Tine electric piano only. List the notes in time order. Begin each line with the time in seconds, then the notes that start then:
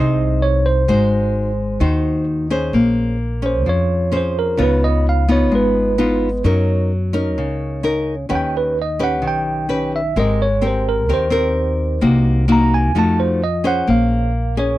Already playing: D#5
0.42 C#5
0.66 C5
3.46 C5
3.69 C#5
4.17 C5
4.39 A#4
4.62 B4
4.84 D#5
5.09 F5
5.32 C#5
5.55 B4
8.31 F#5
8.35 G5
8.57 B4
8.82 D#5
9.03 F#5
9.28 G5
9.96 E5
10.20 D#5
10.42 C#5
10.67 C5
10.89 A#4
11.14 C5
12.52 A#5
12.74 G#5
12.99 A5
13.20 C5
13.44 D#5
13.67 F#5
13.90 F5
14.59 C#5